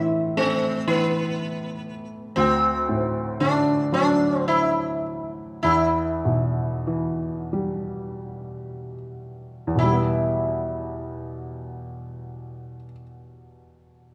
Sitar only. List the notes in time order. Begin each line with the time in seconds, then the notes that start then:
Already playing: E4
0.37 C4
0.88 B3
2.36 C4
3.40 D4
3.94 D4
4.48 E4
5.63 E4
9.79 E4